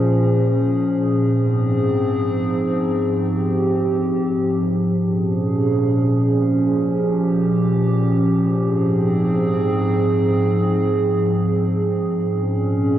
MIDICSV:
0, 0, Header, 1, 2, 480
1, 0, Start_track
1, 0, Tempo, 500000
1, 12467, End_track
2, 0, Start_track
2, 0, Title_t, "Ambient pad"
2, 0, Program_c, 0, 92
2, 0, Note_on_c, 0, 46, 88
2, 0, Note_on_c, 0, 53, 77
2, 0, Note_on_c, 0, 61, 77
2, 0, Note_on_c, 0, 68, 94
2, 1264, Note_off_c, 0, 46, 0
2, 1264, Note_off_c, 0, 53, 0
2, 1264, Note_off_c, 0, 61, 0
2, 1265, Note_off_c, 0, 68, 0
2, 1300, Note_on_c, 0, 44, 84
2, 1300, Note_on_c, 0, 53, 78
2, 1301, Note_on_c, 0, 60, 77
2, 1301, Note_on_c, 0, 68, 97
2, 3028, Note_off_c, 0, 68, 0
2, 3043, Note_on_c, 0, 67, 98
2, 4756, Note_off_c, 0, 44, 0
2, 4756, Note_off_c, 0, 60, 0
2, 4772, Note_off_c, 0, 67, 0
2, 4790, Note_on_c, 0, 61, 80
2, 4791, Note_on_c, 0, 68, 99
2, 4792, Note_on_c, 0, 46, 84
2, 6519, Note_off_c, 0, 68, 0
2, 6537, Note_on_c, 0, 67, 95
2, 8246, Note_off_c, 0, 61, 0
2, 8247, Note_off_c, 0, 46, 0
2, 8264, Note_off_c, 0, 67, 0
2, 8282, Note_on_c, 0, 44, 88
2, 8282, Note_on_c, 0, 60, 78
2, 8282, Note_on_c, 0, 68, 93
2, 11734, Note_off_c, 0, 53, 0
2, 11738, Note_off_c, 0, 44, 0
2, 11738, Note_off_c, 0, 60, 0
2, 11738, Note_off_c, 0, 68, 0
2, 11771, Note_on_c, 0, 61, 77
2, 11771, Note_on_c, 0, 68, 98
2, 11772, Note_on_c, 0, 46, 84
2, 11772, Note_on_c, 0, 53, 82
2, 12467, Note_off_c, 0, 46, 0
2, 12467, Note_off_c, 0, 53, 0
2, 12467, Note_off_c, 0, 61, 0
2, 12467, Note_off_c, 0, 68, 0
2, 12467, End_track
0, 0, End_of_file